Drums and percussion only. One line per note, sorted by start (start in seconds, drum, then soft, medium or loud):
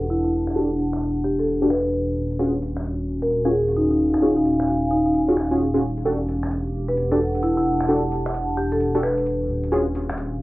0.02 closed hi-hat medium
0.10 closed hi-hat medium
0.47 finger snap medium
0.47 closed hi-hat soft
0.56 closed hi-hat medium
0.79 closed hi-hat medium
0.93 finger snap medium
1.02 closed hi-hat medium
1.39 closed hi-hat soft
1.47 closed hi-hat medium
1.70 finger snap medium
1.85 closed hi-hat medium
1.93 closed hi-hat medium
2.31 closed hi-hat soft
2.39 closed hi-hat medium
2.62 closed hi-hat medium
2.77 finger snap medium
2.85 closed hi-hat medium
3.22 closed hi-hat soft
3.31 closed hi-hat medium
3.68 closed hi-hat medium
3.77 closed hi-hat medium
4.14 finger snap medium
4.14 closed hi-hat soft
4.22 closed hi-hat medium
4.45 closed hi-hat medium
4.60 finger snap medium
4.68 closed hi-hat medium
5.06 closed hi-hat soft
5.14 closed hi-hat medium
5.37 finger snap medium
5.51 closed hi-hat medium
5.60 closed hi-hat medium
5.97 closed hi-hat soft
6.06 closed hi-hat medium
6.29 closed hi-hat medium
6.43 finger snap medium
6.51 closed hi-hat medium
6.89 closed hi-hat soft
6.97 closed hi-hat medium
7.35 closed hi-hat medium
7.43 closed hi-hat medium
7.81 finger snap soft
7.81 closed hi-hat soft
7.89 closed hi-hat medium
8.12 closed hi-hat medium
8.26 finger snap medium
8.34 closed hi-hat medium
8.72 closed hi-hat soft
8.80 closed hi-hat medium
9.03 finger snap medium
9.18 closed hi-hat medium
9.26 closed hi-hat medium
9.64 closed hi-hat soft
9.72 closed hi-hat medium
9.95 closed hi-hat medium
10.09 finger snap medium
10.18 closed hi-hat medium